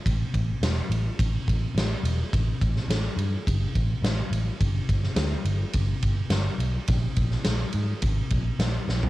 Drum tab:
RD |x-x-x-x-x-x-x-x-|x-x-x-x-x-x-x-x-|x-x-x-x-x-x-x-x-|x-x-x-x-x-x-x---|
SD |----o-------o---|---oo-------o---|---oo-------o---|---oo-------o-o-|
FT |----------------|----------------|----------------|---------------o|
BD |o-o-----o-o-----|o-o-----o-o-----|o-o-----o-o-----|o-o-----o-o-----|